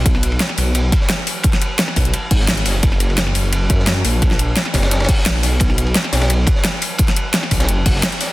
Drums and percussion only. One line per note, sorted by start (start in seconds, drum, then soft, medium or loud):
0.06 kick loud
0.06 closed hi-hat medium
0.06 ride medium
0.15 snare soft
0.23 closed hi-hat medium
0.23 ride medium
0.32 ride soft
0.40 snare loud
0.40 closed hi-hat medium
0.40 ride medium
0.49 snare soft
0.58 open hi-hat medium
0.58 ride medium
0.75 closed hi-hat medium
0.75 ride medium
0.92 kick loud
0.92 closed hi-hat medium
0.92 ride medium
1.01 snare soft
1.09 snare loud
1.09 closed hi-hat medium
1.09 ride medium
1.27 open hi-hat medium
1.27 ride medium
1.43 kick loud
1.43 closed hi-hat medium
1.43 ride medium
1.53 snare soft
1.53 closed hi-hat soft
1.62 closed hi-hat medium
1.62 ride medium
1.79 snare loud
1.79 closed hi-hat medium
1.79 ride loud
1.88 snare soft
1.88 ride soft
1.96 kick medium
1.96 open hi-hat medium
1.96 ride medium
2.05 closed hi-hat soft
2.13 closed hi-hat medium
2.13 ride medium
2.31 kick loud
2.31 closed hi-hat medium
2.31 open hi-hat medium
2.40 snare soft
2.48 snare loud
2.48 closed hi-hat medium
2.48 ride medium
2.57 closed hi-hat soft
2.57 ride soft
2.65 snare medium
2.65 open hi-hat medium
2.65 ride medium
2.83 kick loud
2.83 closed hi-hat medium
2.83 ride medium
2.92 snare soft
3.00 closed hi-hat medium
3.00 ride medium
3.10 ride soft
3.18 snare loud
3.18 closed hi-hat medium
3.18 ride loud
3.27 snare soft
3.35 open hi-hat medium
3.35 ride medium
3.53 closed hi-hat medium
3.53 ride medium
3.70 kick loud
3.70 closed hi-hat medium
3.70 ride medium
3.79 snare soft
3.87 snare loud
3.87 closed hi-hat medium
3.87 ride loud
4.05 open hi-hat medium
4.05 ride medium
4.22 kick loud
4.22 closed hi-hat medium
4.22 ride medium
4.31 snare soft
4.39 closed hi-hat medium
4.39 ride medium
4.56 snare loud
4.56 closed hi-hat medium
4.56 ride loud
4.66 snare soft
4.66 ride soft
4.74 kick medium
4.74 snare loud
4.74 open hi-hat medium
4.74 ride medium
4.83 snare loud
4.83 ride medium
4.91 snare loud
4.91 closed hi-hat medium
4.91 ride medium
5.00 snare medium
5.00 ride medium
5.05 snare medium
5.05 ride medium
5.09 kick loud
5.09 closed hi-hat medium
5.09 open hi-hat medium
5.18 snare soft
5.26 snare loud
5.26 closed hi-hat medium
5.26 ride loud
5.35 ride soft
5.43 snare medium
5.43 open hi-hat medium
5.43 ride medium
5.60 kick loud
5.60 closed hi-hat medium
5.60 ride medium
5.70 snare soft
5.78 closed hi-hat medium
5.78 ride medium
5.87 ride soft
5.95 snare loud
5.95 closed hi-hat medium
5.95 ride medium
6.04 snare soft
6.13 snare loud
6.13 open hi-hat medium
6.13 ride medium
6.21 snare loud
6.21 ride medium
6.30 closed hi-hat loud
6.30 ride medium
6.47 kick loud
6.47 closed hi-hat medium
6.47 ride medium
6.55 snare soft
6.64 snare loud
6.64 closed hi-hat loud
6.64 ride medium
6.82 open hi-hat medium
6.82 ride medium
6.98 kick loud
6.98 closed hi-hat loud
6.98 ride medium
7.08 snare soft
7.08 closed hi-hat soft
7.16 closed hi-hat medium
7.16 ride medium
7.34 snare loud
7.34 closed hi-hat loud
7.34 ride loud
7.43 snare soft
7.43 ride soft
7.51 kick medium
7.51 open hi-hat medium
7.51 ride medium
7.60 snare loud
7.60 closed hi-hat soft
7.60 ride medium
7.69 closed hi-hat medium
7.86 kick loud
7.86 closed hi-hat medium
7.86 open hi-hat medium
7.95 snare soft
8.03 snare loud
8.03 closed hi-hat loud
8.03 ride medium
8.12 closed hi-hat soft
8.12 ride soft
8.21 snare medium
8.21 open hi-hat medium
8.21 ride medium